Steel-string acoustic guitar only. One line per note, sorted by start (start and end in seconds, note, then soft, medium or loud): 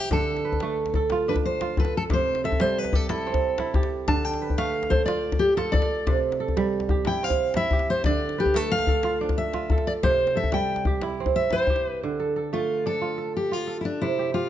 0.00 0.12 G4 medium
0.13 0.91 A4 medium
1.29 1.34 B4 medium
1.45 1.79 C5 medium
1.80 1.95 B4 medium
1.97 2.02 A4 medium
2.13 2.42 C5 medium
2.45 2.61 E5 medium
2.61 2.78 C5 medium
2.78 2.95 B4 medium
2.95 3.08 A4 medium
3.09 3.88 A4 medium
4.08 4.25 A5 loud
4.25 4.57 G5 loud
4.58 4.92 F5 medium
4.90 5.05 C5 medium
5.06 5.40 D5 medium
5.39 5.55 G4 medium
5.57 5.74 A4 medium
5.72 6.19 D5 medium
7.07 7.24 G5 loud
7.24 7.56 F5 loud
7.57 7.90 E5 loud
7.90 8.05 C5 medium
8.06 8.39 D5 loud
8.40 8.56 G4 medium
8.56 8.72 A4 medium
8.72 9.17 F5 loud
9.38 9.83 E5 medium
9.87 9.92 D5 medium
10.03 10.37 C5 loud
10.37 10.53 E5 medium
10.54 10.84 G5 medium
11.36 11.52 E5 medium
11.53 11.87 C5 medium
11.87 11.98 B4 medium
12.54 12.83 F4 medium
12.87 13.32 A4 medium
13.37 13.53 G4 medium
13.53 13.80 F4 medium
13.81 13.85 E4 soft
13.85 14.02 D4 medium
14.01 14.34 E4 medium
14.34 14.49 F4 medium